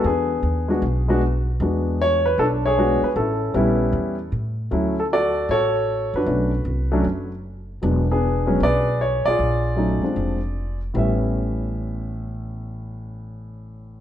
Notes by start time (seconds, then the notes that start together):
0.04 E2 B3 D4 G#4
0.43 D#2
0.68 G#3 B3 D4 F#4
0.82 B1
1.08 G#3 B3 D4 F#4
1.60 E2 G#3 B3 D4 F#4
2.02 C#5
2.26 B4
2.38 B1 D4 A4
2.66 G#4 C#5
2.78 G#3 B3 D4 F#4
3.02 B4, muted upright bass stroke
3.16 A1 C#4 E4 A4
3.54 A#1 G3 B3 C#4 E4
3.93 E2
4.32 A2
4.71 D2 F#3 A3 C#4 E4
5.00 A4
5.13 F#4 A4 D5
5.49 A1 F#4 A4 C#5
6.14 F#2 D4 F#4 B4
6.26 B1 F#3 A3 C#4 D4
6.65 C2
6.92 F#3 A3 C#4 D4
7.04 F#1
7.82 E1 F#3 G#3 B3 D4
8.11 B3 D4 G#4
8.46 F#3 G#3 B3 C#4
8.60 B1 G#4 D5
8.64 B4
9.01 C#5
9.25 B1 F4 G#4 D5
9.39 A#1
9.76 F#3 A3 C#4 D#4
10.02 F3 G#3 C4 D4, muted upright bass stroke
10.16 F1
10.94 A1 A2 G3 B3 C#4 E5